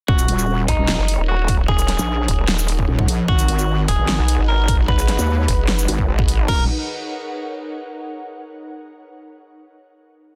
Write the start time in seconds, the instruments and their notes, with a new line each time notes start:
0.08 wobble bass D#1, ambient pad D#4, clean electric guitar F#4, kick
0.19 closed hi-hat, shaker
0.28 wobble bass D#1, closed hi-hat
0.35 ambient pad A#4, shaker
0.41 ambient pad C#5
0.68 wobble bass A#1, clean electric guitar D#4, kick, closed hi-hat
0.79 wobble bass D#1
0.88 snare
0.99 wobble bass F#1
1.08 closed hi-hat
1.19 wobble bass D#1
1.25 clean electric guitar F#4, ambient pad F#5
1.48 kick, closed hi-hat
1.59 wobble bass D#1
1.68 clean electric guitar G#4, kick
1.79 closed hi-hat, shaker
1.88 snare, closed hi-hat
1.99 wobble bass A#1, shaker
2.28 wobble bass D#1, kick, closed hi-hat
2.48 snare
2.59 shaker
2.68 closed hi-hat
2.79 kick
2.88 wobble bass D#1
2.99 kick
3.08 wobble bass A#1, closed hi-hat
3.28 wobble bass G#1, analog synth pad G#3 D#4 F#4 B4, clean electric guitar F#4, kick
3.36 ambient pad G#4, closed hi-hat, shaker
3.48 wobble bass G#1, closed hi-hat
3.59 shaker
3.88 wobble bass D#1, clean electric guitar G#4, kick, closed hi-hat
3.99 wobble bass G#1
4.08 snare
4.14 ambient pad B4
4.19 wobble bass B1
4.28 closed hi-hat
4.39 wobble bass G#1
4.48 clean electric guitar A#4
4.68 kick, closed hi-hat
4.79 wobble bass G#1
4.88 clean electric guitar B4, kick
4.99 closed hi-hat, shaker
5.08 snare, closed hi-hat
5.19 wobble bass D#2, shaker
5.48 wobble bass F#1, kick, closed hi-hat
5.68 snare
5.79 shaker
5.88 wobble bass G#1, closed hi-hat
5.99 kick
6.08 wobble bass G#1
6.19 kick
6.28 closed hi-hat
6.48 wobble bass D#1, ambient pad D#4, clean electric guitar A#4, kick, crash
6.55 ambient pad A#4
6.61 ambient pad C#5
6.66 ambient pad F#5